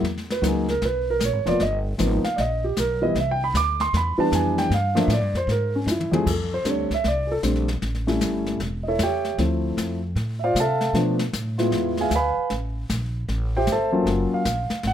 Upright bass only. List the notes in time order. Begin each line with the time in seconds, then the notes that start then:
0.02 E2
0.41 C#2
0.82 B1
1.20 A#1
1.33 G#1
1.46 E1
1.60 G1
1.99 G#1
2.38 A#1
2.77 B1
3.15 C2
3.54 D2
3.93 E2
4.18 muted upright bass stroke
4.32 F2
4.70 G2
5.08 A2
5.21 G2
5.34 F2
5.47 G#2
5.86 F#2
6.12 muted upright bass stroke
6.26 F2
6.64 D2
6.91 muted upright bass stroke
7.04 C2
7.43 A#1
7.82 A1
8.22 G1
8.60 E1
8.99 E2
9.38 D2
9.77 F2
10.15 A2
10.55 C3
10.93 B2
11.33 A2
11.71 E2
12.10 D2
12.37 muted upright bass stroke
12.51 A1
12.90 A#1
13.28 A1
13.67 G1
14.06 F#1
14.32 muted upright bass stroke
14.45 A#1
14.71 muted upright bass stroke
14.84 G#1